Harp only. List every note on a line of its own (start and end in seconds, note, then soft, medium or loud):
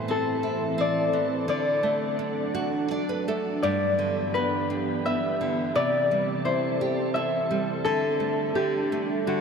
0.00 1.39 C5 medium
0.11 2.30 A4 medium
0.80 1.49 D5 medium
1.49 3.34 D5 medium
3.62 5.47 D5 medium
4.34 6.39 B4 medium
5.05 6.78 E5 medium
5.76 7.60 D5 medium
6.45 8.43 C5 medium
7.14 8.86 E5 medium
7.84 9.41 A4 medium
8.55 9.33 G4 medium
9.27 9.41 F#4 medium